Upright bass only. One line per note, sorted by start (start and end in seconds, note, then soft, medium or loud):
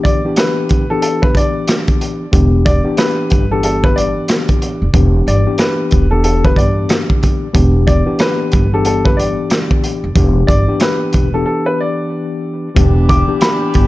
2.33 2.79 E1 loud
3.32 4.13 G1 medium
4.82 4.92 F1 medium
4.94 5.22 E1 loud
5.27 5.44 G1 medium
5.93 6.49 E1 medium
6.56 6.85 G1 medium
7.55 8.00 E1 loud
8.54 9.35 G1 medium
10.04 10.14 F1 medium
10.16 10.44 E1 loud
10.49 10.66 G1 medium
11.14 11.42 E1 medium
12.77 13.22 E1 loud
13.75 13.87 G1 medium